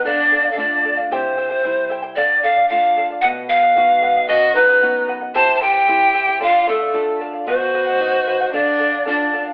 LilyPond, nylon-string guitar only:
\new Staff \with { instrumentName = "Nylon-string guitar" } { \time 2/4 \key d \dorian \tempo 4 = 113 d4 <a d' f'>4 | c4 <g c' e'>4 | d4 <a d' f'>4 | b,4 <b dis' fis'>4 |
fis,4 <b dis' fis'>4 | c4 <c' e' g'>4 | d4 <d' f' a'>4 | b,4 <dis' fis' dis''>4 |
d4 <d' f' a'>4 | }